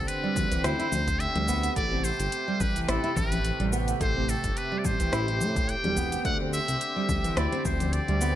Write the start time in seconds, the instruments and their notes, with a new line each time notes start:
Already playing: analog synth pad D3 C4 G4
0.08 muted trumpet B4, closed hi-hat, shaker
0.24 nylon-string guitar G3
0.36 analog synth bass D2, kick, low conga, shaker
0.51 nylon-string guitar E3, closed hi-hat, udu, shaker
0.64 analog synth bass D2, nylon-string guitar E4, muted trumpet C5, cross-stick, closed hi-hat, shaker
0.79 nylon-string guitar E4, closed hi-hat
0.92 analog synth bass D2, low conga, shaker
1.07 kick, closed hi-hat, udu, shaker
1.20 muted trumpet E5, closed hi-hat, shaker
1.35 analog synth bass D2, nylon-string guitar G3, closed hi-hat, low conga
1.48 nylon-string guitar B3, udu, shaker
1.63 closed hi-hat, shaker
1.76 analog synth bass A1, analog synth pad C3 A3, nylon-string guitar A3, muted trumpet D5, kick, closed hi-hat, shaker
1.92 nylon-string guitar C4
2.04 muted trumpet C5, shaker
2.20 analog synth bass G1, closed hi-hat, shaker
2.32 closed hi-hat, shaker
2.48 nylon-string guitar G3
2.60 analog synth bass A1, muted trumpet B4, kick, low conga, shaker
2.76 nylon-string guitar E3, closed hi-hat, udu, shaker
2.82 muted trumpet B4
2.88 analog synth bass A1, nylon-string guitar E4, muted trumpet A4, cross-stick, closed hi-hat, shaker
3.04 nylon-string guitar E4, closed hi-hat
3.17 analog synth bass A1, muted trumpet B4, kick, low conga, shaker
3.32 closed hi-hat, low conga, shaker
3.45 closed hi-hat, shaker
3.60 analog synth bass A1, nylon-string guitar G3, closed hi-hat
3.73 nylon-string guitar B3, shaker
3.88 closed hi-hat, shaker
4.01 analog synth bass A1, nylon-string guitar A3, muted trumpet C5, kick, closed hi-hat, shaker
4.16 nylon-string guitar C4
4.29 muted trumpet A4, shaker
4.44 analog synth bass G1, kick, closed hi-hat, shaker
4.57 muted trumpet B4, closed hi-hat, shaker
4.72 nylon-string guitar G3
4.78 muted trumpet D5
4.85 analog synth bass A1, muted trumpet C5, kick, low conga, shaker
5.00 nylon-string guitar E3, closed hi-hat, udu, shaker
5.13 analog synth bass A1, nylon-string guitar E4, cross-stick, closed hi-hat, shaker
5.28 nylon-string guitar E4, closed hi-hat
5.41 analog synth bass A2, low conga, shaker
5.56 kick, closed hi-hat, udu, shaker
5.69 muted trumpet G5, closed hi-hat, shaker
5.84 analog synth bass E1, nylon-string guitar G3, closed hi-hat, low conga
5.97 nylon-string guitar B3, udu, shaker
6.12 closed hi-hat, shaker
6.24 analog synth bass D2, analog synth pad D3 C4, nylon-string guitar A3, muted trumpet F#5, kick, closed hi-hat, shaker
6.40 nylon-string guitar C4
6.53 muted trumpet E5, shaker
6.68 analog synth bass C2, closed hi-hat, shaker
6.81 closed hi-hat, shaker
6.96 nylon-string guitar G3
7.09 analog synth bass D2, kick, low conga, shaker
7.23 nylon-string guitar E3, closed hi-hat, udu, shaker
7.37 analog synth bass D2, nylon-string guitar E4, muted trumpet D5, cross-stick, closed hi-hat, shaker
7.52 nylon-string guitar C4, closed hi-hat
7.65 analog synth bass D2, muted trumpet C5, kick, low conga, shaker
7.80 closed hi-hat, low conga, shaker
7.93 muted trumpet D5, closed hi-hat, shaker
8.08 analog synth bass D2, nylon-string guitar G3, closed hi-hat
8.21 nylon-string guitar B3, shaker